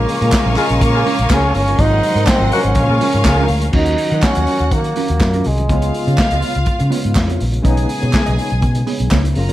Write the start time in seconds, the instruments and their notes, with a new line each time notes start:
Already playing: tine electric piano C#3 F3 G#3 A#3 F4, trombone A#3, violin section C#4 A#4 F5, string section A#4 G#5 C#6
0.09 muted clean electric guitar stroke, open hi-hat
0.21 fingered electric bass A#2, clean electric guitar G#3 C#4 F4 A#4, closed hi-hat
0.32 kick, snare, clap, closed hi-hat
0.45 fingered electric bass A#1, clean electric guitar G#3 C#4 F4 C#5
0.56 clean electric guitar G#3 C#4 F4 A#4, trombone G#3, horn section C#4 F4 G#4, clap, open hi-hat
0.69 fingered electric bass A#1, muted clean electric guitar stroke, closed hi-hat
0.81 fingered electric bass A#2, trombone A#3, kick, closed hi-hat
0.94 horn section C#4 F4 G#4, muted clean electric guitar stroke
1.06 clean electric guitar G#3 C#4 F4 A#4, open hi-hat
1.19 fingered electric bass A#1, muted clean electric guitar stroke, closed hi-hat
1.30 fingered electric bass C#2, clean electric guitar G#3 C#4 F4 A#4, horn section C#4 F4 G#4, trombone C#4, kick, snare, clap, closed hi-hat
1.43 muted clean electric guitar stroke
1.54 fingered electric bass G1, trombone C#4, muted clean electric guitar stroke, open hi-hat
1.68 clean electric guitar G#3 C#4 F4 A#4, closed hi-hat
1.76 fingered electric bass G#1, tine electric piano C3 F3 F#3 G#3 A#3, clean electric guitar F#3 C4 F4, violin section D#4 C5 F#5, string section A#4 D#5 F#5 C6, kick, closed hi-hat
1.80 trombone D#4, clean electric guitar A#4
2.03 muted clean electric guitar stroke, open hi-hat
2.15 fingered electric bass G#2, clean electric guitar F#3 C4 F4 A#4, closed hi-hat
2.27 kick, snare, clap, closed hi-hat
2.28 trombone C4, muted clean electric guitar stroke, clap
2.40 fingered electric bass G#1, clean electric guitar F#3 C4 F4 C5
2.52 clean electric guitar F#3 C4 F4 A#4, horn section A#3 F#4 A#4, trombone C#4, open hi-hat
2.63 fingered electric bass G#1, muted clean electric guitar stroke, closed hi-hat
2.75 fingered electric bass A#1, tine electric piano C#3 F3 G#3 A#3 F4, violin section C#4 A#4 F5, string section A#4 G#5 C#6, kick, closed hi-hat
2.89 fingered electric bass A#2, horn section C#4 F4 G#4, muted clean electric guitar stroke
3.01 clean electric guitar G#3 C#4 F4 A#4, open hi-hat
3.13 fingered electric bass G#2, muted clean electric guitar stroke, closed hi-hat
3.24 fingered electric bass C#2, horn section C#4 F4 G#4, muted clean electric guitar stroke, kick, snare, clap, closed hi-hat
3.37 clean electric guitar G#3 C#4 F4 A#4
3.48 fingered electric bass D2, muted clean electric guitar stroke, open hi-hat
3.62 muted clean electric guitar stroke, closed hi-hat
3.72 fingered electric bass D#2, tine electric piano D#3 F#3 C#4 F#4, clean electric guitar F#3 C#4 F4 A#4, trombone D#4, violin section F#4 F#5, kick, crash
3.86 closed hi-hat
3.98 muted clean electric guitar stroke, open hi-hat
4.11 fingered electric bass D#3, clean electric guitar F#3 C#4 F4 A#4, closed hi-hat
4.22 trombone C#4, kick, snare, clap
4.35 fingered electric bass D#2, clean electric guitar F#3 C#4 F4 C#5, closed hi-hat
4.47 clean electric guitar F#3 C#4 F4 A#4, open hi-hat
4.59 fingered electric bass D#2, muted clean electric guitar stroke, closed hi-hat
4.71 fingered electric bass D#3, trombone A#3, kick, closed hi-hat
4.84 muted clean electric guitar stroke, closed hi-hat
4.96 clean electric guitar F#3 C#4 F4 A#4, open hi-hat
5.08 fingered electric bass D#2, muted clean electric guitar stroke, closed hi-hat
5.20 fingered electric bass F#2, tine electric piano D#3 F#3 C#4 F4, kick, snare, clap
5.33 clean electric guitar F#3 C#4 F4 A#4, closed hi-hat
5.44 fingered electric bass C2, trombone G#3, muted clean electric guitar stroke, open hi-hat
5.58 muted clean electric guitar stroke, closed hi-hat
5.68 fingered electric bass C#2, tine electric piano C#3 G#3 B3 F4, clean electric guitar B3 F4 G#4 C#5, violin section F4 F5, kick, closed hi-hat
5.82 closed hi-hat
5.94 muted clean electric guitar stroke, open hi-hat
6.07 fingered electric bass C#3, clean electric guitar B3 F4 G#4 C#5, closed hi-hat
6.18 muted clean electric guitar stroke, kick, snare, clap
6.31 fingered electric bass C#2, clean electric guitar B3 F4 G#4 D#5, closed hi-hat
6.42 clean electric guitar B3 F4 G#4 C#5, open hi-hat
6.55 fingered electric bass C#2, muted clean electric guitar stroke, closed hi-hat
6.66 muted fingered electric bass stroke, kick, closed hi-hat
6.79 fingered electric bass C#3, muted clean electric guitar stroke, closed hi-hat
6.90 tine electric piano C#3 G#3 B3 F4, clean electric guitar B3 F4 G#4 C#5, open hi-hat
7.03 fingered electric bass G#2, muted clean electric guitar stroke, closed hi-hat
7.15 fingered electric bass F2, muted clean electric guitar stroke, kick, snare, clap
7.17 clap
7.27 clean electric guitar B3 F4 G#4 C#5, closed hi-hat
7.39 fingered electric bass A#1, muted clean electric guitar stroke, open hi-hat
7.52 muted clean electric guitar stroke, closed hi-hat
7.62 fingered electric bass B1, tine electric piano C#3 G#3 B3 D#4, clean electric guitar B3 D#4 G#4 C#5, violin section G#4 G#5, kick, closed hi-hat
7.77 closed hi-hat
7.89 muted clean electric guitar stroke, open hi-hat
8.02 fingered electric bass B2, clean electric guitar B3 D#4 G#4 C#5, closed hi-hat
8.13 muted clean electric guitar stroke, kick, snare, clap
8.15 clap
8.26 fingered electric bass B1, clean electric guitar B3 D#4 G#4 D#5, closed hi-hat
8.37 clean electric guitar B3 D#4 G#4 C#5, open hi-hat
8.50 fingered electric bass B1, muted clean electric guitar stroke, closed hi-hat
8.62 fingered electric bass B2, kick, closed hi-hat
8.75 muted clean electric guitar stroke, closed hi-hat
8.87 clean electric guitar B3 D#4 G#4 C#5, open hi-hat
8.99 fingered electric bass B1, muted clean electric guitar stroke, closed hi-hat
9.11 fingered electric bass C#2, clean electric guitar B3 D#4 G#4 C#5, kick, snare, clap
9.25 muted clean electric guitar stroke, closed hi-hat
9.35 fingered electric bass F#1, tine electric piano C#3 F#3 A#3 F4, violin section A#4 A#5, muted clean electric guitar stroke, open hi-hat
9.49 clean electric guitar F4 A#4 C#5, closed hi-hat